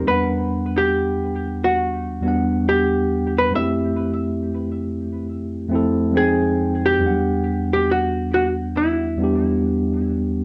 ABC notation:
X:1
M:4/4
L:1/16
Q:"Swing 16ths" 1/4=69
K:Flyd
V:1 name="Hollow-body jazz guitar"
B3 G4 ^F4- F G3 B | e12 _A3 G- | G3 G ^F2 F2 E8 |]
V:2 name="Tine electric piano"
[E,,G,B,D^f]6 z4 [E,,G,B,Df]4 z2 | [F,,^G,A,CE=G]6 z4 [F,,A,CEA]2 [F,,_A,C_Eg]4 | [E,,^F,G,B,D^f]6 z4 [E,,G,B,DG]4 z2 |]